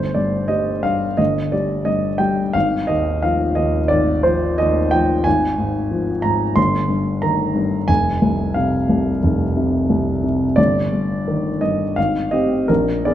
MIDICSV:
0, 0, Header, 1, 2, 480
1, 0, Start_track
1, 0, Tempo, 682594
1, 1792, Time_signature, 4, 2, 24, 8
1, 3228, Tempo, 663717
1, 7068, Tempo, 692042
1, 8508, Tempo, 725514
1, 9278, End_track
2, 0, Start_track
2, 0, Title_t, "Grand piano"
2, 0, Program_c, 0, 0
2, 0, Note_on_c, 0, 31, 37
2, 0, Note_on_c, 0, 72, 55
2, 8, Control_c, 0, 64, 127
2, 102, Note_on_c, 0, 74, 46
2, 105, Note_off_c, 0, 72, 0
2, 111, Note_on_c, 0, 43, 32
2, 337, Note_on_c, 0, 75, 50
2, 345, Note_on_c, 0, 55, 29
2, 347, Note_off_c, 0, 74, 0
2, 499, Note_off_c, 0, 43, 0
2, 583, Note_on_c, 0, 77, 58
2, 588, Note_off_c, 0, 75, 0
2, 590, Note_on_c, 0, 43, 30
2, 739, Note_off_c, 0, 55, 0
2, 797, Note_off_c, 0, 31, 0
2, 825, Note_on_c, 0, 75, 53
2, 833, Note_off_c, 0, 77, 0
2, 833, Note_on_c, 0, 31, 37
2, 851, Control_c, 0, 64, 0
2, 960, Control_c, 0, 64, 127
2, 981, Note_off_c, 0, 43, 0
2, 1069, Note_on_c, 0, 74, 50
2, 1072, Note_off_c, 0, 75, 0
2, 1077, Note_on_c, 0, 55, 28
2, 1301, Note_on_c, 0, 75, 55
2, 1309, Note_on_c, 0, 43, 32
2, 1310, Note_off_c, 0, 74, 0
2, 1456, Note_off_c, 0, 55, 0
2, 1534, Note_on_c, 0, 79, 58
2, 1545, Note_off_c, 0, 75, 0
2, 1545, Note_on_c, 0, 55, 33
2, 1693, Note_off_c, 0, 43, 0
2, 1762, Note_off_c, 0, 31, 0
2, 1782, Note_on_c, 0, 77, 66
2, 1784, Note_off_c, 0, 79, 0
2, 1789, Note_off_c, 0, 55, 0
2, 1790, Note_on_c, 0, 32, 44
2, 1805, Control_c, 0, 64, 0
2, 1932, Control_c, 0, 64, 127
2, 2019, Note_on_c, 0, 75, 60
2, 2030, Note_off_c, 0, 77, 0
2, 2030, Note_on_c, 0, 39, 34
2, 2266, Note_off_c, 0, 75, 0
2, 2268, Note_on_c, 0, 77, 55
2, 2277, Note_on_c, 0, 53, 30
2, 2414, Note_off_c, 0, 39, 0
2, 2498, Note_on_c, 0, 75, 54
2, 2503, Note_on_c, 0, 39, 33
2, 2507, Note_off_c, 0, 77, 0
2, 2654, Note_off_c, 0, 53, 0
2, 2718, Note_off_c, 0, 32, 0
2, 2730, Note_on_c, 0, 74, 63
2, 2741, Note_off_c, 0, 75, 0
2, 2742, Note_on_c, 0, 32, 41
2, 2886, Note_off_c, 0, 39, 0
2, 2976, Note_on_c, 0, 72, 55
2, 2978, Note_off_c, 0, 74, 0
2, 2987, Note_on_c, 0, 53, 34
2, 3221, Note_on_c, 0, 75, 63
2, 3222, Note_off_c, 0, 72, 0
2, 3229, Note_on_c, 0, 39, 37
2, 3374, Note_off_c, 0, 53, 0
2, 3459, Note_on_c, 0, 79, 67
2, 3467, Note_off_c, 0, 75, 0
2, 3469, Note_on_c, 0, 53, 33
2, 3615, Note_off_c, 0, 39, 0
2, 3678, Note_off_c, 0, 32, 0
2, 3697, Note_on_c, 0, 80, 64
2, 3703, Note_on_c, 0, 32, 43
2, 3704, Note_off_c, 0, 79, 0
2, 3709, Note_off_c, 0, 53, 0
2, 3721, Control_c, 0, 64, 0
2, 3835, Control_c, 0, 64, 127
2, 3942, Note_on_c, 0, 44, 34
2, 4185, Note_on_c, 0, 53, 34
2, 4323, Note_off_c, 0, 44, 0
2, 4408, Note_on_c, 0, 82, 63
2, 4414, Note_off_c, 0, 80, 0
2, 4419, Note_on_c, 0, 44, 32
2, 4562, Note_off_c, 0, 53, 0
2, 4626, Note_off_c, 0, 32, 0
2, 4649, Note_on_c, 0, 84, 67
2, 4651, Note_off_c, 0, 82, 0
2, 4656, Note_on_c, 0, 31, 46
2, 4657, Note_off_c, 0, 44, 0
2, 4671, Control_c, 0, 64, 0
2, 4777, Control_c, 0, 64, 127
2, 4890, Note_on_c, 0, 43, 30
2, 5128, Note_on_c, 0, 82, 59
2, 5131, Note_off_c, 0, 84, 0
2, 5137, Note_on_c, 0, 51, 35
2, 5274, Note_off_c, 0, 43, 0
2, 5372, Note_on_c, 0, 43, 31
2, 5516, Note_off_c, 0, 51, 0
2, 5582, Note_off_c, 0, 31, 0
2, 5604, Note_on_c, 0, 80, 70
2, 5608, Note_off_c, 0, 82, 0
2, 5608, Note_on_c, 0, 29, 43
2, 5611, Note_off_c, 0, 43, 0
2, 5625, Control_c, 0, 64, 0
2, 5748, Control_c, 0, 64, 127
2, 5853, Note_on_c, 0, 36, 34
2, 6087, Note_on_c, 0, 77, 51
2, 6095, Note_off_c, 0, 80, 0
2, 6099, Note_on_c, 0, 48, 32
2, 6245, Note_off_c, 0, 36, 0
2, 6340, Note_on_c, 0, 36, 33
2, 6489, Note_off_c, 0, 48, 0
2, 6554, Note_off_c, 0, 29, 0
2, 6585, Note_on_c, 0, 29, 42
2, 6728, Note_off_c, 0, 36, 0
2, 6827, Note_on_c, 0, 48, 34
2, 7067, Note_on_c, 0, 36, 33
2, 7206, Note_off_c, 0, 48, 0
2, 7295, Note_off_c, 0, 77, 0
2, 7300, Note_on_c, 0, 48, 33
2, 7443, Note_off_c, 0, 36, 0
2, 7511, Note_off_c, 0, 29, 0
2, 7525, Note_on_c, 0, 74, 70
2, 7536, Note_on_c, 0, 31, 43
2, 7538, Note_off_c, 0, 48, 0
2, 7549, Control_c, 0, 64, 0
2, 7672, Control_c, 0, 64, 127
2, 7779, Note_on_c, 0, 43, 31
2, 8023, Note_on_c, 0, 51, 31
2, 8165, Note_off_c, 0, 43, 0
2, 8254, Note_on_c, 0, 75, 53
2, 8255, Note_off_c, 0, 74, 0
2, 8261, Note_on_c, 0, 43, 31
2, 8409, Note_off_c, 0, 51, 0
2, 8476, Note_off_c, 0, 31, 0
2, 8499, Note_on_c, 0, 77, 63
2, 8501, Note_off_c, 0, 75, 0
2, 8504, Note_off_c, 0, 43, 0
2, 8508, Note_on_c, 0, 32, 41
2, 8516, Control_c, 0, 64, 0
2, 8613, Control_c, 0, 64, 127
2, 8730, Note_on_c, 0, 75, 56
2, 8736, Note_off_c, 0, 77, 0
2, 8742, Note_on_c, 0, 60, 28
2, 8743, Note_on_c, 0, 67, 32
2, 8956, Note_off_c, 0, 60, 0
2, 8957, Note_off_c, 0, 67, 0
2, 8966, Note_off_c, 0, 32, 0
2, 8974, Note_off_c, 0, 75, 0
2, 8974, Note_on_c, 0, 70, 54
2, 8983, Note_on_c, 0, 34, 39
2, 8992, Control_c, 0, 64, 0
2, 9094, Control_c, 0, 64, 127
2, 9220, Note_on_c, 0, 74, 56
2, 9222, Note_off_c, 0, 70, 0
2, 9227, Note_on_c, 0, 59, 31
2, 9228, Note_on_c, 0, 68, 33
2, 9278, Note_off_c, 0, 34, 0
2, 9278, Note_off_c, 0, 59, 0
2, 9278, Note_off_c, 0, 68, 0
2, 9278, Note_off_c, 0, 74, 0
2, 9278, End_track
0, 0, End_of_file